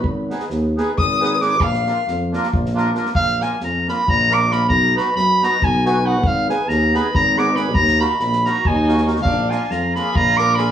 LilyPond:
<<
  \new Staff \with { instrumentName = "Clarinet" } { \time 7/8 \tempo 4 = 137 r2. r8 | r2. r8 | f''8 aes''8 bes''8 ces'''8 bes''8 d'''8 ces'''8 | bes''8 b''8 b''8 bes''8 aes''8 aes''8 fis''8 |
f''8 aes''8 bes''8 ces'''8 bes''8 d'''8 ces'''8 | bes''8 ces'''8 ces'''8 bes''8 aes''4 r8 | f''8 aes''8 bes''8 ces'''8 bes''8 d'''8 ces'''8 | }
  \new Staff \with { instrumentName = "Violin" } { \time 7/8 r2 ees'''8.~ ees'''32 ees'''32 d'''8 | f''4 r2 r8 | r2. r8 | r2. r8 |
r2. r8 | r4. ges'8 ees'4 r8 | d'8 f'8 f'8 aes'8 f'8 bes'8 aes'8 | }
  \new Staff \with { instrumentName = "Accordion" } { \time 7/8 r8 <ces' ees' aes' ces''>8 r8 <ces' ees' aes' ces''>8 r8 <ces' ees' aes' ces''>8 <ces' ees' aes' ces''>8 | r8 <bes d' f' bes'>8 r8 <bes d' f' bes'>8 r8 <bes d' f' bes'>8 <bes d' f' bes'>8 | r8 <bes d' f' bes'>8 r8 <bes d' f' bes'>8 r8 <bes d' f' bes'>8 <bes d' f' bes'>8 | r8 <b dis' fis' b'>8 r8 <b dis' fis' b'>8 r8 <b dis' fis' b'>8 <b dis' fis' b'>8 |
r8 <ces' ees' aes' ces''>8 r8 <ces' ees' aes' ces''>8 r8 <ces' ees' aes' ces''>8 <ces' ees' aes' ces''>8 | r8 <bes ees' ges' bes'>8 r8 <bes ees' ges' bes'>8 r8 <bes ees' ges' bes'>8 <bes ees' ges' bes'>8 | r8 <bes d' f' bes'>8 r8 <bes d' f' bes'>8 r8 <bes d' f' bes'>8 <bes d' f' bes'>8 | }
  \new Staff \with { instrumentName = "Tuba" } { \clef bass \time 7/8 aes,,4 ees,4 aes,,4. | bes,,4 f,4 bes,,4. | bes,,4 f,4 bes,,4. | b,,4 fis,4 b,,4. |
aes,,4 ees,4 aes,,4. | ees,4 bes,,4 ees,4. | bes,,4 f,4 bes,,4. | }
  \new DrumStaff \with { instrumentName = "Drums" } \drummode { \time 7/8 bd8 sn16 sn16 sn8 sn8 bd8 sn8 sn8 | bd16 sn16 sn8 sn8 sn16 sn16 bd16 sn16 sn8 sn16 sn16 | bd8 sn8 sn8 sn8 bd8 sn8 sn8 | bd8 sn8 sn8 sn8 bd8 sn4 |
bd8 sn8 sn8 sn8 bd8 sn8 sn8 | bd16 sn16 sn8 sn16 sn16 sn8 bd8 sn16 sn16 sn16 sn16 | bd8 sn8 sn8 sn8 bd8 sn8 sn8 | }
>>